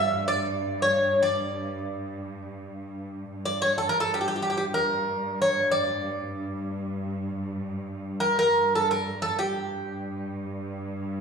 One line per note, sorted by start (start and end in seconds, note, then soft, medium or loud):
0.00 3.32 G2 medium
0.00 0.27 E5 medium
0.28 0.82 D5 medium
0.82 1.21 C#5 medium
1.23 2.42 D5 medium
3.33 9.32 G2 medium
3.46 3.60 D5 medium
3.62 3.77 C#5 medium
3.78 3.89 A4 medium
3.89 4.00 A#4 medium
4.00 4.12 A4 medium
4.14 4.20 G4 medium
4.21 4.27 G4 medium
4.28 4.35 G4 medium
4.36 4.41 G4 medium
4.42 4.49 G4 medium
4.50 4.56 G4 medium
4.57 4.64 G4 medium
4.74 5.41 A#4 medium
5.42 5.68 C#5 medium
5.72 7.09 D5 medium
8.20 8.38 A#4 medium
8.39 8.75 A#4 medium
8.75 8.89 A4 medium
8.91 9.21 A#4 medium
9.22 9.37 A4 medium
9.33 11.21 G2 medium
9.39 10.72 G4 medium